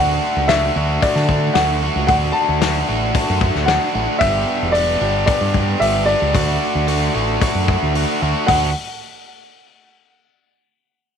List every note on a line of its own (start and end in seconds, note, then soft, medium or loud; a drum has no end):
0.00 0.18 D2 loud
0.00 0.49 A3 medium
0.00 0.50 D4 medium
0.00 0.50 F#4 loud
0.00 0.51 F#5 medium
0.36 0.69 C#2 medium
0.48 0.76 A3 medium
0.48 0.76 D4 medium
0.48 0.77 F#4 loud
0.48 1.03 E5 medium
0.48 snare loud
0.48 open hi-hat medium
0.76 0.98 D2 medium
0.76 1.02 A3 medium
0.76 1.03 D4 medium
0.76 1.03 F#4 medium
1.02 1.55 A3 loud
1.02 1.56 D4 loud
1.02 1.56 F#4 loud
1.02 1.57 D5 medium
1.02 kick loud
1.02 open hi-hat medium
1.16 1.49 D3 medium
1.16 snare soft
1.29 kick medium
1.54 1.88 D2 medium
1.54 1.81 A3 medium
1.54 1.82 D4 medium
1.54 1.83 F#4 medium
1.54 2.06 F#5 medium
1.54 snare loud
1.54 open hi-hat medium
1.82 2.07 A3 medium
1.82 2.09 D4 medium
1.82 2.09 F#4 medium
1.96 2.07 C#2 loud
2.07 2.31 D2 medium
2.07 2.60 A3 medium
2.07 2.62 D4 medium
2.07 2.62 F#4 loud
2.07 2.13 F#5 medium
2.07 kick loud
2.07 open hi-hat medium
2.32 3.36 A5 loud
2.49 2.82 D2 medium
2.61 2.87 A3 medium
2.61 2.88 D4 medium
2.61 2.88 F#4 loud
2.61 snare loud
2.61 open hi-hat medium
2.88 3.11 A1 medium
2.88 3.13 A3 medium
2.88 3.15 D4 medium
2.88 3.15 F#4 loud
3.14 3.67 A3 loud
3.14 3.68 D4 loud
3.14 3.68 F#4 loud
3.14 kick loud
3.14 open hi-hat medium
3.30 3.51 F#2 medium
3.41 kick medium
3.55 3.77 D2 medium
3.55 snare soft
3.66 3.93 A3 medium
3.66 3.95 D4 medium
3.66 3.95 F#4 medium
3.66 4.17 F#5 medium
3.66 snare loud
3.66 open hi-hat medium
3.94 4.06 A1 medium
3.94 4.20 A3 medium
3.94 4.21 D4 medium
3.94 4.20 F#4 medium
4.19 4.43 G1 loud
4.19 4.73 B3 medium
4.19 4.74 D4 loud
4.19 4.74 G4 loud
4.19 4.75 E5 medium
4.19 kick loud
4.19 open hi-hat medium
4.62 4.95 E1 medium
4.72 5.00 B3 medium
4.72 5.01 D4 medium
4.72 5.02 G4 loud
4.72 5.25 D5 medium
4.72 open hi-hat medium
5.01 5.23 G1 loud
5.01 5.27 B3 medium
5.01 5.29 D4 loud
5.01 5.28 G4 medium
5.26 5.80 B3 loud
5.26 5.81 D4 loud
5.26 5.81 G4 loud
5.26 5.82 D5 medium
5.26 kick loud
5.26 open hi-hat medium
5.41 5.74 G2 medium
5.54 kick medium
5.80 6.14 G1 loud
5.80 6.06 B3 medium
5.80 6.08 D4 medium
5.80 6.08 G4 medium
5.80 6.08 E5 medium
5.80 open hi-hat medium
6.06 6.33 B3 medium
6.06 6.34 D4 loud
6.06 6.34 G4 medium
6.06 8.16 D5 medium
6.22 6.33 C#2 loud
6.34 6.57 D2 loud
6.34 6.86 A3 loud
6.34 6.87 D4 loud
6.34 6.88 F#4 loud
6.34 kick loud
6.34 open hi-hat medium
6.75 7.08 D2 medium
6.88 7.13 A3 loud
6.88 7.14 D4 medium
6.88 7.14 F#4 medium
6.88 open hi-hat medium
7.14 7.37 A1 medium
7.14 7.40 A3 medium
7.14 7.40 D4 medium
7.14 7.41 F#4 medium
7.41 7.93 A3 loud
7.41 7.94 D4 loud
7.41 7.95 F#4 loud
7.41 kick loud
7.41 open hi-hat medium
7.55 7.77 F#2 medium
7.68 kick medium
7.82 8.04 D2 medium
7.94 8.20 A3 medium
7.94 8.21 D4 medium
7.94 8.22 F#4 medium
7.94 open hi-hat medium
8.22 8.33 D2 loud
8.22 8.46 A3 medium
8.22 8.47 D4 loud
8.22 8.47 F#4 medium
8.47 8.73 D2 loud
8.47 8.69 A3 loud
8.47 8.69 D4 medium
8.47 8.70 F#4 loud
8.47 8.72 F#5 medium
8.47 kick medium
8.47 open hi-hat medium